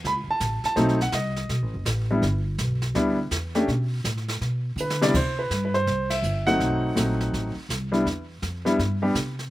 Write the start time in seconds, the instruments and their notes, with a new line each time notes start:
0.04 upright bass C#2, grand piano B5, brush sweep, kick, snare
0.27 grand piano A5, muted upright bass stroke
0.40 upright bass A1, kick, snare, hi-hat pedal
0.64 grand piano A5, muted upright bass stroke, snare
0.76 upright bass B1, grand piano F#3 A3 C4 D#4, brush sweep, kick, snare
0.89 snare
1.01 grand piano F#5, snare
1.12 upright bass C2, grand piano D#5, kick, snare, hi-hat pedal
1.36 snare
1.49 upright bass B1, brush sweep, kick, snare
1.62 upright bass A1
1.74 upright bass F#1
1.85 upright bass A1, kick, snare, hi-hat pedal
2.11 grand piano G3 B3 D4 E4
2.22 upright bass G1, brush sweep, kick, snare
2.58 upright bass B1, kick, snare, hi-hat pedal
2.82 snare
2.95 upright bass D2, grand piano G3 B3 D4 E4, brush sweep, kick, snare
3.31 upright bass E2, kick, snare, hi-hat pedal
3.55 grand piano A3 C#4 D4 G4, snare
3.68 upright bass B2, brush sweep, kick, snare
4.04 upright bass A2, kick, snare, hi-hat pedal
4.17 snare
4.28 snare
4.41 upright bass B2, brush sweep, kick, snare
4.76 upright bass D3, hi-hat pedal
4.81 grand piano B4
4.90 snare
5.01 grand piano C3 G3 B3 D4 E4 D5, snare
5.14 upright bass C3, grand piano C5, brush sweep, kick, snare, crash
5.39 grand piano B4
5.50 upright bass G2, kick, snare, hi-hat pedal
5.65 grand piano B4
5.74 grand piano C5, snare
5.86 upright bass C2, brush sweep, kick, snare
6.10 grand piano E5, snare, ride
6.22 upright bass G1, hi-hat pedal
6.46 grand piano F#3 A3 C4 D#4 F#5, snare
6.60 upright bass B1, brush sweep, kick, snare
6.95 upright bass A#1, grand piano F#3 A3 C4 D#4, kick, snare, hi-hat pedal
7.21 snare
7.33 upright bass A1, brush sweep, kick, snare
7.56 muted upright bass stroke
7.69 upright bass C2, kick, snare, hi-hat pedal
7.92 grand piano G3 B3 D4 E4, snare
8.06 upright bass E2, brush sweep, kick, snare
8.42 upright bass F2, kick, snare, hi-hat pedal
8.65 grand piano G3 B3 D4 E4, snare
8.79 upright bass G2, brush sweep, kick, snare
9.02 grand piano G3 B3 D4 G4
9.15 upright bass C3, kick, snare, hi-hat pedal
9.39 snare